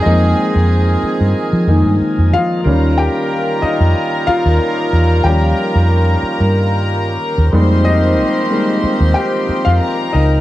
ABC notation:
X:1
M:4/4
L:1/16
Q:"Swing 16ths" 1/4=92
K:Fm
V:1 name="Violin section"
[Aa]12- [Aa]2 z2 | [Bb]16- | [Bb]12- [Bb]2 [cc']2- | [cc']12 [Bb]4 |]
V:2 name="Grand piano"
[Ee]12 z2 [Ff]2- | [Ff]2 [Gg]4 [Ee]4 [Ff]6 | [Gg]8 z8 | [Ee]8 [Gg]3 [Ff]3 [Ee]2 |]
V:3 name="Grand piano" clef=bass
[F,A,B,]8- [F,A,B,]2 [E,A,B,E]2 z4 | [E,G,D]16 | [F,G,D]2 z12 [G,A,B,E]2- | [G,A,B,E]4 [G,A,B,E]2 z8 z2 |]
V:4 name="Tonewheel organ"
[F,CEAB]16 | [E,B,DFG]16- | [E,B,DFG]12- [E,B,DFG]2 [F,CEFB]2- | [F,CEFB]16 |]
V:5 name="Horn section"
[E,CA]12 z4 | [G,FB]16- | [G,FB]12 z2 [E,CG]2- | [E,CG]12- [E,CG]2 z2 |]
V:6 name="Fingered electric bass" clef=bass
F,,2 z F,,3 z G,, z F, F,, G,, z F,, F,2 | E,,3 z4 F,, z3 E,, z2 =E,,2 | E,,2 z F,,3 z G,,4- G,, z E,, F,,2- | F,,3 z4 E,, z3 F,, z2 D,,2 |]